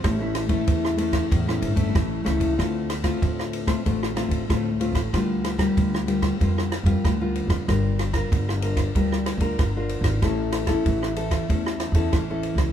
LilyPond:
<<
  \new Staff \with { instrumentName = "Nylon-string guitar" } { \time 4/4 \key d \minor \tempo 4 = 94 << { <a cis' e'>16 <a cis' e'>8 <a cis' e'>8. <a cis' e'>8 r16 <a cis' e'>8 <a cis' e'>8. <a cis' e'>8 | <a c' f'>8 r16 <a c' f'>4 <a c' f'>16 <a c' f'>8 <a c' f'>8 <a c' f'>16 r16 <a c' f'>16 r16 | <g bes f'>8. <g bes f'>8. <g bes f'>8 <g bes f'>8 r16 <g bes f'>8 <g bes f'>8. | <d' f' bes'>8 r16 <d' f' bes'>8. <d' f' bes'>8 <d' f' bes'>8. <d' f' bes'>8 <d' f' bes'>8. |
<cis' e' a'>8. <cis' e' a'>8. <cis' e' a'>8 <cis' e' a'>8. <cis' e' a'>8 <cis' e' a'>8. | } \\ { a,4 e4 a,4 e4 | d4 a,4 d4 a,4 | d4 d4 d4 d4 | g4 d4 g4 d4 |
a4 e4 a4 e4 | } >> }
  \new Staff \with { instrumentName = "Upright bass" } { \clef bass \time 4/4 \key d \minor a,,4 e,4 e,8 g,,8 a,,8 cis,8 | d,4 d,4 a,,8. a,,16 d,8. a,,16 | d,4 d,4 f,8. f,16 d,8. f,16 | g,,4 g,,4 d,8. d,16 g,,8. gis,,16 |
a,,4 a,,4 e,8. e,16 a,,8. cis,16 | }
  \new DrumStaff \with { instrumentName = "Drums" } \drummode { \time 4/4 <bd cymr ss>8 <cymr ss>16 <bd cymr>16 <bd cymr>16 ss16 cymr16 <bd cymr ss>16 <bd cymr>16 ss16 cymr16 <bd cymr>16 <bd cymr ss>8 <cymr ss>16 <bd cymr>16 | <bd cymr ss>8 <cymr ss>16 <bd cymr ss>16 <bd cymr>16 ss16 cymr16 <bd cymr ss>16 <bd cymr>16 ss16 <cymr ss>16 <bd cymr>16 <bd cymr ss>8 cymr16 <bd cymr ss>16 | <bd cymr ss>8 <cymr ss>16 <bd cymr ss>16 <bd cymr>16 ss16 cymr16 <bd cymr ss>16 <bd cymr>16 ss16 <cymr ss>16 <bd cymr>16 <bd cymr ss>8 cymr16 <bd cymr ss>16 | <bd cymr ss>8 <cymr ss>16 <bd cymr ss>16 <bd cymr>16 ss16 cymr16 <bd cymr ss>16 <bd cymr>16 ss16 <cymr ss>16 <bd cymr>16 <bd cymr ss>8 cymr16 <bd cymr ss>16 |
<bd cymr ss>8 <cymr ss>16 <bd cymr ss>16 <bd cymr>16 ss16 cymr16 <bd cymr ss>16 <bd cymr>16 ss16 <cymr ss>16 <bd cymr>16 <bd cymr ss>8 cymr16 <bd cymr ss>16 | }
>>